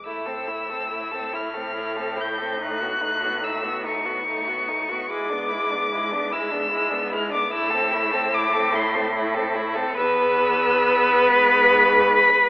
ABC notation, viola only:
X:1
M:6/8
L:1/16
Q:3/8=48
K:Am
V:1 name="Viola"
A, C A, C A, C A, C A, C A, C | A, B, A, B, A, B, A, B, A, B, A, B, | ^G, B, G, B, G, B, G, B, G, B, G, B, | A, C A, C A, C A, C A, C A, C |
B,12 |]